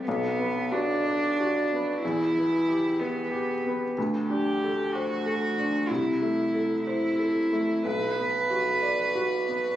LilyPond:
<<
  \new Staff \with { instrumentName = "Cello" } { \time 6/8 \key b \phrygian \tempo 4. = 62 b4 d'2 | e'4. b4. | r8 g'4 fis'4. | e'4. e'4. |
b'2. | }
  \new Staff \with { instrumentName = "Felt piano" } { \time 6/8 \key b \phrygian b,,8 b8 fis'8 d''8 fis'8 b8 | e,8 b8 g'8 b'8 g'8 b8 | d,8 d'8 a'8 c''8 a'8 d'8 | c,8 a8 a'8 c''8 a'8 a8 |
b,,8 b8 fis'8 d''8 fis'8 b8 | }
>>